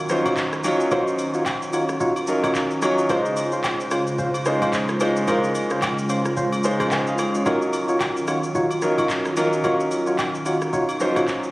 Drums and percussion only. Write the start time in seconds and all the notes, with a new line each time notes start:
0.09 cross-stick, shaker
0.26 kick, high agogo, shaker
0.37 kick, clap, shaker
0.53 cross-stick, shaker
0.64 high agogo, shaker
0.80 shaker
0.91 kick, high agogo, shaker
1.08 shaker
1.19 high agogo, shaker
1.34 shaker
1.46 kick, clap, high agogo, low woodblock, shaker
1.62 shaker
1.73 high agogo, shaker
1.89 cross-stick, shaker
2.00 kick, shaker
2.16 high agogo, shaker
2.27 shaker
2.44 kick, cross-stick, high agogo, shaker
2.55 kick, clap, shaker
2.71 shaker
2.82 cross-stick, high agogo, shaker
2.98 shaker
3.09 kick, high agogo, shaker
3.26 shaker
3.37 high agogo, shaker
3.52 shaker
3.64 kick, clap, high agogo, low woodblock, shaker
3.80 shaker
3.91 cross-stick, high agogo, shaker
4.07 shaker
4.19 kick, shaker
4.34 high agogo, shaker
4.45 cross-stick, shaker
4.62 kick, high agogo, shaker
4.73 kick, clap, shaker
4.89 cross-stick, shaker
5.00 high agogo, shaker
5.17 shaker
5.28 kick, high agogo, shaker
5.44 shaker
5.55 high agogo, shaker
5.70 cross-stick, shaker
5.82 kick, clap, high agogo, low woodblock, shaker
5.98 shaker
6.09 high agogo, shaker
6.25 cross-stick, shaker
6.37 kick, shaker
6.52 high agogo, shaker
6.64 shaker
6.80 kick, cross-stick, high agogo, shaker
6.91 kick, clap, low woodblock, shaker
7.07 shaker
7.18 cross-stick, high agogo, shaker
7.35 shaker
7.46 kick, high agogo, shaker
7.62 shaker
7.73 high agogo, shaker
7.88 shaker
8.00 kick, clap, high agogo, low woodblock, shaker
8.17 shaker
8.28 cross-stick, high agogo, shaker
8.43 shaker
8.55 kick, shaker
8.71 high agogo, shaker
8.82 cross-stick, shaker
8.98 kick, high agogo, shaker
9.09 kick, clap, shaker
9.25 cross-stick, shaker
9.37 high agogo, shaker
9.53 shaker
9.64 kick, high agogo, shaker
9.80 shaker
9.91 high agogo, shaker
10.07 shaker
10.19 kick, clap, high agogo, low woodblock, shaker
10.35 shaker
10.46 high agogo, shaker
10.62 cross-stick, shaker
10.73 kick, shaker
10.89 high agogo, shaker
11.00 shaker
11.16 kick, cross-stick, high agogo, shaker
11.28 kick, clap, shaker
11.43 shaker